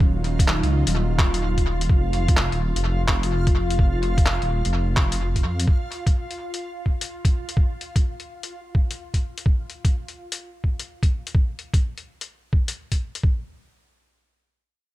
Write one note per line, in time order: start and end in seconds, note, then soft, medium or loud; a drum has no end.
0.00 0.61 D#1 medium
0.00 1.86 D#3 medium
0.00 1.86 F#3 medium
0.00 1.88 D#4 medium
0.00 9.46 F4 medium
0.00 9.47 F5 medium
0.00 kick loud
0.24 closed hi-hat soft
0.39 kick loud
0.39 closed hi-hat medium
0.48 clap loud
0.63 0.84 C#2 medium
0.63 closed hi-hat soft
0.87 1.88 D#1 medium
0.87 closed hi-hat medium
1.18 kick loud
1.18 clap loud
1.34 closed hi-hat medium
1.57 kick medium
1.57 closed hi-hat soft
1.81 closed hi-hat medium
1.90 2.50 F1 medium
1.90 kick loud
2.13 closed hi-hat soft
2.28 kick loud
2.28 closed hi-hat medium
2.37 clap loud
2.52 2.73 D#1 medium
2.52 closed hi-hat soft
2.76 4.39 F1 medium
2.76 closed hi-hat medium
3.08 kick medium
3.08 clap loud
3.23 closed hi-hat medium
3.47 kick loud
3.47 closed hi-hat soft
3.70 closed hi-hat medium
3.79 kick loud
4.03 closed hi-hat soft
4.18 kick loud
4.18 closed hi-hat medium
4.26 clap loud
4.42 4.63 D#1 medium
4.42 closed hi-hat soft
4.65 5.44 F1 medium
4.65 closed hi-hat medium
4.97 kick loud
4.97 clap loud
5.12 closed hi-hat medium
5.36 kick medium
5.36 closed hi-hat soft
5.44 5.66 F2 medium
5.60 closed hi-hat soft
5.68 kick loud
5.92 closed hi-hat soft
6.07 kick loud
6.07 closed hi-hat soft
6.31 closed hi-hat soft
6.54 closed hi-hat soft
6.86 kick medium
7.01 closed hi-hat soft
7.25 kick loud
7.25 closed hi-hat soft
7.49 closed hi-hat soft
7.57 kick loud
7.81 closed hi-hat soft
7.96 kick medium
7.96 closed hi-hat soft
8.20 closed hi-hat soft
8.43 closed hi-hat soft
8.75 kick medium
8.91 closed hi-hat soft
9.14 kick medium
9.14 closed hi-hat soft
9.38 closed hi-hat soft
9.46 kick loud
9.70 closed hi-hat soft
9.85 kick medium
9.85 closed hi-hat soft
10.08 closed hi-hat soft
10.32 closed hi-hat medium
10.64 kick medium
10.80 closed hi-hat soft
11.03 kick medium
11.03 closed hi-hat soft
11.27 closed hi-hat soft
11.35 kick loud
11.59 closed hi-hat soft
11.74 kick medium
11.74 closed hi-hat medium
11.98 closed hi-hat soft
12.21 closed hi-hat medium
12.53 kick medium
12.68 closed hi-hat medium
12.92 kick medium
12.92 closed hi-hat soft
13.15 closed hi-hat soft
13.23 kick loud